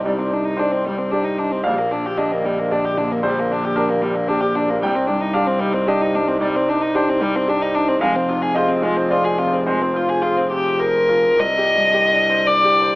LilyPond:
<<
  \new Staff \with { instrumentName = "Ambient pad" } { \time 3/4 \key c \minor \tempo 4 = 112 << { <g' c''>2.~ | <g' c''>2.~ | <g' c''>2. | <g' c''>2.~ |
<g' c''>2. | <aes' c''>2.~ | <aes' c''>2. | <g' c''>2. | } \\ { ees'2. | d2.~ | d2. | ees'2.~ |
ees'2. | f'2.~ | f'2. | d2. | } >> }
  \new Staff \with { instrumentName = "Grand piano" } { \time 3/4 \key c \minor << { d''4 c''4. r8 | f''4 ees''4 d''4 | c''4 bes'4. r8 | g''4 f''4 ees''4 |
d''4 c''4. r8 | f''4 ees''4 d''4 | c''2 r4 | r2. | } \\ { <c, g,>8 ees'8 <g' d''>8 g,8 <g' d''>8 ees'8 | bes,,8 bes,8 <g' d''>8 d'8 g'8 bes,8 | bes,,8 d'8 <g' d''>8 bes,8 <g' d''>8 d'8 | c,8 g,8 <g' d''>8 ees'8 <g' d''>8 g,8 |
c,8 ees'8 <g' d''>8 g,8 <g' d''>8 ees'8 | f,8 c8 <aes' c''>8 f'8 <aes' c''>8 c8 | f,8 f'8 <aes' c''>8 c8 <aes' c''>8 f'8 | \tuplet 3/2 { c,8 g'8 g,8 g'8 d'8 c''8 d'8 g'8 c''8 } | } >> }
  \new Staff \with { instrumentName = "Violin" } { \time 3/4 \key c \minor g16 c'16 d'16 ees'16 d'16 c'16 g16 c'16 d'16 ees'16 d'16 c'16 | g16 bes16 d'16 g'16 d'16 bes16 g16 bes16 d'16 g'16 d'16 bes16 | g16 bes16 d'16 g'16 d'16 bes16 g16 bes16 d'16 g'16 d'16 bes16 | g16 c'16 d'16 ees'16 d'16 c'16 g16 c'16 d'16 ees'16 d'16 c'16 |
g16 c'16 d'16 ees'16 d'16 c'16 g16 c'16 d'16 ees'16 d'16 c'16 | aes16 c'16 f'16 aes'16 f'16 c'16 aes16 c'16 f'16 aes'16 f'16 c'16 | aes16 c'16 f'16 aes'16 f'16 c'16 g'8 bes'4 | ees''2 d''4 | }
  \new Staff \with { instrumentName = "Double bass" } { \clef bass \time 3/4 \key c \minor c,2. | bes,,2.~ | bes,,2. | c,2.~ |
c,2. | f,,2.~ | f,,2. | c,2. | }
>>